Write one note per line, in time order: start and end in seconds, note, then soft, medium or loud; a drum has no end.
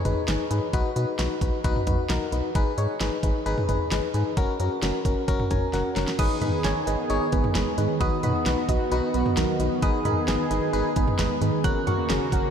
0.05 0.14 G#1 loud
0.05 0.22 D#4 medium
0.05 0.22 G#4 medium
0.05 0.22 B4 medium
0.05 closed hi-hat medium
0.05 mid tom medium
0.28 0.37 G#1 loud
0.28 0.45 D#4 medium
0.28 0.45 G#4 medium
0.28 0.45 B4 medium
0.28 snare loud
0.28 closed hi-hat medium
0.50 0.60 G#2 medium
0.50 0.67 D#4 medium
0.50 0.67 G#4 medium
0.50 0.67 B4 medium
0.50 closed hi-hat medium
0.73 0.83 B1 loud
0.73 0.90 D#4 loud
0.73 0.90 F#4 loud
0.73 0.90 B4 loud
0.73 kick loud
0.73 closed hi-hat medium
0.96 1.05 B2 loud
0.96 1.13 D#4 medium
0.96 1.13 F#4 medium
0.96 1.13 B4 medium
0.96 closed hi-hat medium
1.19 1.28 B1 loud
1.19 1.35 D#4 medium
1.19 1.35 F#4 medium
1.19 1.35 B4 medium
1.19 snare loud
1.19 closed hi-hat medium
1.41 1.51 B1 loud
1.41 1.58 D#4 medium
1.41 1.58 F#4 medium
1.41 1.58 B4 medium
1.41 kick medium
1.41 closed hi-hat medium
1.64 1.74 B1 loud
1.64 1.81 D#4 loud
1.64 1.81 F#4 loud
1.64 1.81 B4 loud
1.64 kick medium
1.64 closed hi-hat medium
1.76 mid tom medium
1.87 1.96 B1 loud
1.87 2.04 D#4 medium
1.87 2.04 F#4 medium
1.87 2.04 B4 medium
1.87 kick medium
1.87 closed hi-hat medium
1.87 mid tom medium
2.10 2.19 B1 loud
2.10 2.26 D#4 medium
2.10 2.26 F#4 medium
2.10 2.26 A#4 medium
2.10 snare loud
2.10 closed hi-hat medium
2.32 2.42 B1 medium
2.32 2.49 D#4 medium
2.32 2.49 F#4 medium
2.32 2.49 B4 medium
2.32 closed hi-hat medium
2.55 2.64 G#1 loud
2.55 2.72 D#4 loud
2.55 2.72 G#4 medium
2.55 2.72 B4 loud
2.55 kick loud
2.55 closed hi-hat medium
2.78 2.87 G#2 loud
2.78 2.95 D#4 medium
2.78 2.95 G#4 medium
2.78 2.95 C#5 medium
2.78 closed hi-hat medium
3.01 3.10 G#1 loud
3.01 3.17 D#4 medium
3.01 3.17 G#4 medium
3.01 3.17 B4 medium
3.01 snare loud
3.01 closed hi-hat medium
3.23 3.32 G#1 loud
3.23 3.40 D#4 medium
3.23 3.40 G#4 medium
3.23 3.40 B4 medium
3.23 kick medium
3.23 closed hi-hat medium
3.46 3.55 G#1 medium
3.46 3.63 D#4 loud
3.46 3.63 G#4 loud
3.46 3.63 B4 loud
3.46 closed hi-hat medium
3.58 mid tom medium
3.69 3.78 G#1 loud
3.69 3.85 D#4 medium
3.69 3.85 G#4 medium
3.69 3.85 B4 medium
3.69 closed hi-hat medium
3.69 mid tom medium
3.91 4.01 G#1 loud
3.91 4.08 D#4 medium
3.91 4.08 G#4 medium
3.91 4.08 B4 medium
3.91 snare loud
3.91 closed hi-hat medium
4.14 4.23 G#2 loud
4.14 4.31 D#4 medium
4.14 4.31 G#4 medium
4.14 4.31 B4 medium
4.14 closed hi-hat medium
4.37 4.46 F#1 medium
4.37 4.54 C#4 loud
4.37 4.54 F#4 medium
4.37 4.54 A#4 loud
4.37 kick loud
4.37 closed hi-hat medium
4.60 4.69 F#2 loud
4.60 4.77 C#4 medium
4.60 4.77 F#4 medium
4.60 4.76 A#4 medium
4.60 closed hi-hat medium
4.82 4.92 F#1 loud
4.82 4.99 C#4 medium
4.82 4.99 F#4 medium
4.82 4.99 A#4 medium
4.82 snare loud
4.82 closed hi-hat medium
5.05 5.14 F#1 loud
5.05 5.22 C#4 medium
5.05 5.22 F#4 medium
5.05 5.22 A#4 medium
5.05 kick medium
5.05 closed hi-hat medium
5.28 5.37 F#1 loud
5.28 5.45 C#4 loud
5.28 5.45 F#4 medium
5.28 5.45 A#4 loud
5.28 kick medium
5.28 closed hi-hat medium
5.40 mid tom medium
5.51 5.60 F#1 loud
5.51 5.67 C#4 medium
5.51 5.67 F#4 medium
5.51 5.67 A#4 medium
5.51 5.72 G#5 medium
5.51 kick medium
5.51 closed hi-hat medium
5.51 mid tom medium
5.73 5.83 F#1 loud
5.73 5.90 C#4 medium
5.73 5.90 F#4 medium
5.73 5.90 A#4 medium
5.73 6.16 F#5 medium
5.73 snare medium
5.73 closed hi-hat medium
5.96 6.05 F#1 loud
5.96 6.13 C#4 medium
5.96 6.13 F#4 medium
5.96 6.13 A#4 medium
5.96 snare medium
5.96 closed hi-hat medium
6.08 snare medium
6.19 6.28 G#1 loud
6.19 7.99 D#3 medium
6.19 11.60 B3 medium
6.19 6.35 D#4 loud
6.19 7.99 G#4 medium
6.19 6.35 G#4 medium
6.19 6.36 B4 loud
6.19 6.40 D#6 loud
6.19 kick loud
6.19 closed hi-hat medium
6.19 crash medium
6.41 6.51 G#2 loud
6.41 6.58 D#4 medium
6.41 6.58 G#4 medium
6.41 6.58 B4 medium
6.41 6.63 B5 medium
6.41 closed hi-hat medium
6.41 mid tom medium
6.64 6.74 G#1 loud
6.64 6.81 D#4 medium
6.64 6.81 G#4 medium
6.64 6.81 C#5 loud
6.64 6.86 G#5 medium
6.64 snare loud
6.64 closed hi-hat medium
6.87 6.96 G#1 loud
6.87 7.04 D#4 medium
6.87 7.04 G#4 medium
6.87 7.04 B4 medium
6.87 7.09 D#5 medium
6.87 closed hi-hat medium
7.10 7.19 G#1 loud
7.10 7.27 D#4 loud
7.10 7.27 G#4 loud
7.10 7.27 C#5 loud
7.10 closed hi-hat medium
7.32 7.42 G#1 loud
7.32 7.54 B3 medium
7.32 7.49 D#4 medium
7.32 7.49 G#4 medium
7.32 7.49 B4 medium
7.32 kick medium
7.32 closed hi-hat medium
7.44 mid tom medium
7.55 7.65 G#1 loud
7.55 7.77 G#3 medium
7.55 7.72 D#4 medium
7.55 7.72 G#4 medium
7.55 7.72 B4 medium
7.55 snare loud
7.55 closed hi-hat medium
7.78 7.87 G#2 medium
7.78 8.00 D#3 medium
7.78 7.95 D#4 medium
7.78 7.95 G#4 medium
7.78 7.95 B4 medium
7.78 closed hi-hat medium
8.00 8.10 B1 loud
8.00 11.61 D#3 medium
8.00 8.17 D#4 loud
8.00 8.17 F#4 loud
8.00 9.81 F#4 medium
8.00 8.17 B4 loud
8.00 8.22 D#6 loud
8.00 kick loud
8.00 closed hi-hat medium
8.23 8.33 B2 loud
8.23 8.40 D#4 medium
8.23 8.40 F#4 medium
8.23 8.40 B4 medium
8.23 8.45 B5 medium
8.23 closed hi-hat medium
8.23 mid tom medium
8.46 8.55 B1 loud
8.46 8.63 D#4 medium
8.46 8.63 F#4 medium
8.46 8.63 B4 loud
8.46 8.68 F#5 medium
8.46 snare loud
8.46 closed hi-hat medium
8.69 8.78 B1 loud
8.69 8.86 D#4 medium
8.69 8.86 F#4 medium
8.69 8.86 B4 medium
8.69 8.90 D#5 medium
8.69 kick medium
8.69 closed hi-hat medium
8.92 9.01 B1 loud
8.92 9.08 D#4 loud
8.92 9.08 F#4 loud
8.92 9.08 B4 loud
8.92 closed hi-hat medium
9.14 9.23 B1 loud
9.14 9.36 B3 medium
9.14 9.31 D#4 medium
9.14 9.31 F#4 medium
9.14 9.31 B4 medium
9.14 closed hi-hat medium
9.26 mid tom medium
9.37 9.46 B1 loud
9.37 9.59 F#3 medium
9.37 9.54 D#4 medium
9.37 9.54 F#4 medium
9.37 9.54 A#4 medium
9.37 snare loud
9.37 closed hi-hat medium
9.60 9.69 B1 loud
9.60 9.81 D#3 medium
9.60 9.76 D#4 medium
9.60 9.76 F#4 medium
9.60 9.76 B4 medium
9.60 closed hi-hat medium
9.82 9.92 G#1 loud
9.82 9.99 D#4 loud
9.82 9.99 G#4 loud
9.82 11.62 G#4 medium
9.82 9.99 B4 loud
9.82 10.04 D#6 loud
9.82 kick loud
9.82 closed hi-hat medium
10.05 10.14 G#2 loud
10.05 10.22 D#4 medium
10.05 10.22 G#4 medium
10.05 10.22 A#4 medium
10.05 10.27 B5 medium
10.05 closed hi-hat medium
10.05 mid tom medium
10.28 10.37 G#1 loud
10.28 10.44 D#4 medium
10.28 10.44 G#4 medium
10.28 10.44 B4 medium
10.28 10.50 G#5 medium
10.28 snare loud
10.28 closed hi-hat medium
10.50 10.60 G#1 loud
10.50 10.67 D#4 medium
10.50 10.67 G#4 medium
10.50 10.67 B4 medium
10.50 10.72 D#5 medium
10.50 closed hi-hat medium
10.73 10.83 G#1 medium
10.73 10.90 D#4 loud
10.73 10.90 G#4 loud
10.73 10.90 B4 loud
10.73 closed hi-hat medium
10.96 11.06 G#1 loud
10.96 11.18 B3 medium
10.96 11.13 D#4 medium
10.96 11.13 G#4 medium
10.96 11.13 B4 loud
10.96 kick medium
10.96 closed hi-hat medium
11.08 mid tom medium
11.19 11.28 G#1 loud
11.19 11.40 G#3 medium
11.19 11.35 D#4 medium
11.19 11.36 G#4 medium
11.19 11.35 B4 medium
11.19 snare loud
11.19 closed hi-hat medium
11.41 11.51 G#2 loud
11.41 11.63 D#3 medium
11.41 11.58 D#4 medium
11.41 11.58 G#4 medium
11.41 11.58 B4 medium
11.41 closed hi-hat medium
11.64 11.74 F#1 loud
11.64 12.50 C#3 medium
11.64 12.50 A#3 medium
11.64 11.81 C#4 loud
11.64 12.50 F#4 medium
11.64 11.81 F#4 loud
11.64 11.81 A#4 loud
11.64 11.86 F#6 loud
11.64 kick loud
11.64 closed hi-hat medium
11.87 11.96 F#2 loud
11.87 12.04 C#4 medium
11.87 12.04 F#4 medium
11.87 12.04 A#4 medium
11.87 12.09 C#6 medium
11.87 closed hi-hat medium
11.87 mid tom medium
12.09 12.19 F#1 loud
12.09 12.26 C#4 medium
12.09 12.26 F#4 medium
12.09 12.26 G#4 medium
12.09 12.31 A#5 medium
12.09 snare loud
12.09 closed hi-hat medium
12.32 12.42 F#1 loud
12.32 12.49 C#4 medium
12.32 12.49 F#4 medium
12.32 12.49 A#4 medium
12.32 12.50 F#5 medium
12.32 kick medium
12.32 closed hi-hat medium